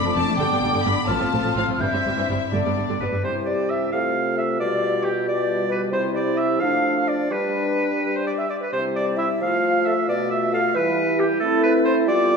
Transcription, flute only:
0.00 1.09 D6 medium
1.07 1.82 F6 soft
1.81 2.29 G6 soft
2.54 3.04 D5 soft
3.03 3.26 B4 soft
3.25 3.48 C5 soft
3.47 3.72 D5 soft
3.71 3.93 E5 soft
3.94 4.37 F5 soft
4.37 4.43 E5 medium
4.61 5.04 D5 medium
5.04 5.10 G4 soft
5.26 5.68 D5 medium
5.69 5.75 B4 medium
5.91 6.13 C5 medium
6.14 6.20 D5 medium
6.36 6.59 E5 medium
6.60 7.09 F5 medium
7.08 7.32 D5 soft
7.31 7.91 B4 medium
8.15 8.25 C5 soft
8.26 8.40 D5 soft
8.38 8.51 E5 soft
8.50 8.62 D5 soft
8.61 8.71 B4 soft
8.72 8.78 C5 soft
8.95 9.18 D5 medium
9.17 9.43 E5 soft
9.41 9.88 F5 medium
9.87 10.07 E5 medium
10.08 10.14 D5 medium
10.30 10.54 E5 medium
10.53 10.76 F5 medium
10.74 11.18 B4 medium
11.18 11.24 G4 medium
11.41 11.63 A4 medium
11.63 11.85 B4 medium
11.86 11.92 C5 medium
12.07 12.37 D5 medium

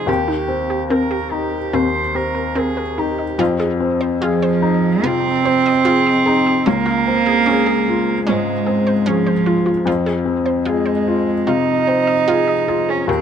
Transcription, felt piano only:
0.00 0.11 C3 medium
0.00 0.11 C4 soft
0.00 0.10 D#4 soft
0.00 0.10 G#4 soft
0.00 0.11 C6 medium
0.06 1.69 D#2 medium
0.06 2.52 G5 soft
0.48 1.15 C4 soft
0.90 1.57 A#4 soft
1.32 1.98 D#4 soft
1.73 3.35 D#2 soft
2.15 2.81 C4 soft
2.56 3.23 A#4 soft
2.99 3.40 D#4 soft
3.39 4.99 F2 medium
3.80 4.46 C4 soft
4.21 4.87 G#4 medium
4.62 5.28 D#4 medium
5.03 5.68 C3 medium
5.45 6.09 C4 soft
5.85 6.49 G#4 soft
6.27 6.67 D#4 medium
6.67 8.23 C#2 medium
7.07 7.71 C4 soft
7.48 8.12 G#4 medium
7.89 8.52 F4 medium
8.29 8.92 G#2 soft
8.67 9.31 C4 soft
9.07 9.71 G#4 soft
9.46 9.86 F4 soft
9.85 11.43 F2 medium
10.25 10.90 C4 soft
10.66 11.31 G#4 medium
11.07 11.72 F4 soft
11.47 12.12 C3 soft
11.88 12.52 C4 soft
12.28 12.92 G#4 soft
12.68 13.08 F4 soft
13.07 13.21 D#2 medium

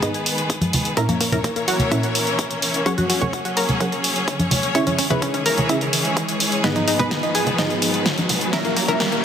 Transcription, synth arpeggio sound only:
0.00 0.88 G#4 medium
0.97 1.05 A#4 medium
1.09 1.17 A#3 medium
1.21 1.29 A#3 medium
1.33 1.40 A#4 medium
1.44 1.52 A#3 medium
1.56 1.64 A#3 medium
1.68 2.77 F#4 medium
2.86 2.94 C#5 medium
2.98 3.06 F#4 medium
3.10 3.18 F#4 medium
3.21 3.29 C#5 medium
3.33 3.41 F#4 medium
3.45 3.53 F#4 medium
3.57 4.66 A#4 loud
4.75 4.83 C#5 medium
4.87 4.95 C#4 medium
4.99 5.07 C#4 medium
5.10 5.18 B4 medium
5.22 5.30 C#4 medium
5.34 5.42 C#4 medium
5.46 6.55 A#4 medium
6.64 6.72 B4 medium
6.76 6.84 D#4 medium
6.88 6.96 D#4 medium
6.99 7.07 B4 medium
7.11 7.19 D#4 medium
7.23 7.31 D#4 medium
7.35 8.44 G#4 medium
8.53 8.61 A#4 medium
8.65 8.73 A#3 medium
8.77 8.85 A#3 medium
8.88 8.96 A#4 medium
9.00 9.08 A#3 medium
9.12 9.20 A#3 medium

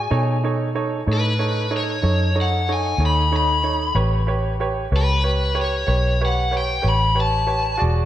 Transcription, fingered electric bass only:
0.11 1.05 B2 medium
1.07 2.01 A2 medium
2.03 2.97 F#2 medium
2.98 3.92 D#2 medium
3.95 4.89 A1 medium
4.92 5.85 C#2 loud
5.88 6.81 B1 medium
6.84 7.78 A1 medium
7.82 8.05 E1 medium

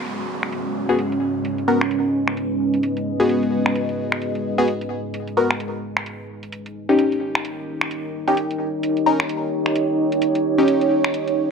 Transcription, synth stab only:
0.00 0.86 B3 medium
0.00 0.86 F#4 medium
0.00 0.86 G#4 medium
0.89 0.97 B3 medium
0.89 0.97 F#4 medium
0.89 0.97 G#4 medium
1.68 1.80 B3 medium
1.68 1.80 F#4 medium
1.68 1.80 A#4 medium
3.20 4.55 B3 medium
3.20 4.55 F#4 medium
3.20 4.55 G#4 medium
4.58 4.67 B3 medium
4.58 4.67 F#4 medium
4.58 4.67 G#4 medium
5.37 5.49 B3 medium
5.37 5.49 F#4 medium
5.37 5.49 A#4 medium
6.89 8.24 C#4 medium
6.89 8.24 D#4 medium
6.89 8.24 G4 medium
8.28 8.36 C#4 medium
8.28 8.36 D#4 medium
8.28 8.36 G4 loud
9.06 9.18 C#4 medium
9.06 9.18 D#4 medium
9.06 9.18 A#4 medium
10.58 11.51 C#4 medium
10.58 11.51 D#4 medium
10.58 11.51 G4 medium

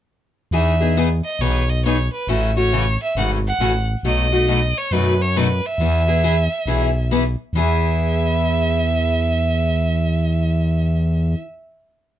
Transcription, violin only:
0.53 0.93 E5 medium
1.24 1.43 D#5 medium
1.41 1.71 C#5 medium
1.69 1.84 D#5 medium
1.85 2.11 C#5 medium
2.13 2.30 B4 medium
2.29 2.56 E5 medium
2.57 2.97 C#5 medium
3.03 3.16 E5 medium
3.18 3.30 F#5 medium
3.47 3.86 F#5 medium
4.07 4.79 D#5 medium
4.77 4.95 C#5 medium
4.93 5.23 B4 medium
5.21 5.38 C#5 medium
5.37 5.67 B4 medium
5.65 7.11 E5 medium
7.56 11.38 E5 medium

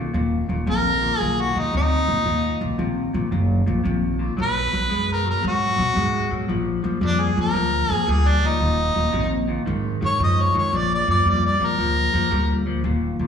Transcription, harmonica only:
0.70 1.18 A#4 loud
1.18 1.43 G#4 loud
1.41 1.60 F#4 medium
1.59 1.74 D#4 medium
1.77 2.78 D#4 loud
4.42 5.08 B4 loud
5.13 5.27 A#4 medium
5.30 5.45 A#4 medium
5.48 6.48 F#4 loud
7.06 7.23 D4 loud
7.22 7.38 G#4 medium
7.41 7.94 A#4 medium
7.94 8.11 G#4 medium
8.11 8.30 G#4 medium
8.29 8.49 D4 loud
8.47 9.48 D#4 loud
10.06 10.21 C#5 loud
10.24 10.43 D#5 loud
10.41 10.56 C#5 medium
10.58 10.78 C#5 medium
10.77 10.92 D5 medium
10.94 11.09 D5 loud
11.11 11.26 D5 loud
11.30 11.45 D5 medium
11.46 11.67 D5 medium
11.65 12.66 A#4 loud

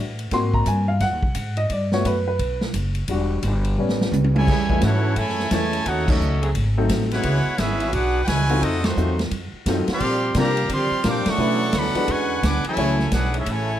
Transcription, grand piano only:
0.00 0.28 E3 medium
0.00 0.29 F#5 medium
0.32 0.86 A#3 medium
0.32 0.86 C4 soft
0.32 0.87 F#4 medium
0.32 0.54 C6 loud
0.54 0.66 A#5 medium
0.67 0.89 G#5 medium
0.88 1.01 F5 medium
1.01 1.54 F#5 medium
1.57 1.70 D#5 medium
1.72 1.93 D5 medium
1.93 2.13 A3 medium
1.93 2.13 B3 soft
1.93 2.14 F#4 medium
1.93 2.05 C#5 medium
2.06 2.26 B4 medium
2.28 2.60 B4 medium
3.09 3.75 G3 medium
3.09 3.76 D4 medium
3.09 3.76 F#4 medium
3.78 4.44 G3 medium
3.78 4.44 B3 medium
3.78 4.45 C#4 medium
4.70 4.81 E3 medium
4.70 4.81 G#3 medium
4.70 4.81 A3 medium
4.70 4.81 C#4 medium
4.70 4.81 G#4 medium
5.52 5.71 E3 medium
5.52 5.71 G#3 medium
5.52 5.71 A3 medium
5.52 5.72 C#4 medium
5.52 5.72 E4 medium
6.09 6.53 F#3 medium
6.09 6.53 A3 medium
6.09 6.53 C#4 medium
6.09 6.53 D#4 medium
6.09 6.53 A4 medium
6.77 7.22 F#3 medium
6.77 7.22 A3 medium
6.77 7.22 C4 medium
6.77 7.22 D#4 medium
6.77 7.22 A4 medium
8.50 8.94 C4 medium
8.50 8.95 D#4 medium
8.50 8.94 F4 medium
8.50 8.94 F#4 medium
8.50 8.95 A4 medium
8.97 9.17 F#3 medium
8.97 9.17 C4 medium
8.97 9.17 D#4 medium
8.97 9.17 F4 medium
8.97 9.17 A4 medium
9.68 9.87 F#3 medium
9.68 9.87 C4 medium
9.68 9.87 D#4 medium
9.68 9.87 F4 medium
9.68 9.87 A4 medium
10.36 10.55 G3 medium
10.36 10.56 C4 medium
10.36 10.55 D4 medium
10.36 10.56 F4 medium
10.36 10.56 A#4 medium
11.04 11.24 G3 medium
11.04 11.24 C4 medium
11.04 11.24 D4 medium
11.04 11.24 F4 medium
11.04 11.24 A#4 medium
11.39 11.59 A3 medium
11.39 11.58 C#4 medium
11.39 11.58 D4 medium
11.39 11.58 E4 medium
11.39 11.59 B4 medium
11.95 12.40 G#3 medium
11.95 12.40 D4 medium
11.95 12.40 E4 medium
11.95 12.40 F#4 medium
11.95 12.40 B4 medium
12.78 12.97 A3 medium
12.78 12.98 C#4 medium
12.78 12.97 E4 medium
12.78 12.97 G#4 medium
12.78 12.97 C#5 medium

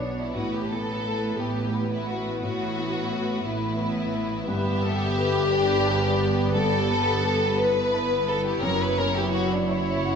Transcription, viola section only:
0.00 0.35 B3 soft
0.00 0.35 D4 soft
0.36 0.70 B3 soft
0.36 0.70 E4 soft
0.71 1.72 B3 soft
0.71 1.72 E4 soft
1.75 2.75 B3 soft
1.75 2.75 E4 soft
2.77 3.78 B3 soft
2.77 3.78 E4 soft
3.79 4.46 B3 soft
3.79 4.47 E4 medium
4.47 5.47 B3 medium
4.47 4.80 B4 medium
4.83 5.17 A4 medium
5.18 5.51 B4 medium
5.52 5.86 D4 medium
5.52 6.53 B4 medium
5.87 6.21 C#3 medium
6.22 7.57 B3 medium
6.56 7.60 G4 medium
7.59 9.65 B3 medium
7.59 10.15 E4 medium
9.69 10.15 C#5 medium

